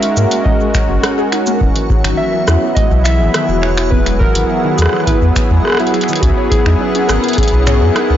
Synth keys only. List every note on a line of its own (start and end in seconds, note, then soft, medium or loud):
0.00 0.47 E5 loud
0.44 0.99 D#5 medium
2.17 2.72 E5 loud
2.75 3.03 D#5 loud
3.04 3.64 E5 loud
3.62 3.92 C#5 loud
3.90 4.21 B4 loud
4.19 4.79 A#4 loud
4.77 5.07 G#4 medium
5.06 5.96 B4 loud
5.92 6.23 G#4 medium
6.21 6.49 F#4 loud
6.50 7.10 G#4 loud
7.08 7.35 A#4 medium
7.37 7.97 G#4 loud
7.94 8.17 A#4 medium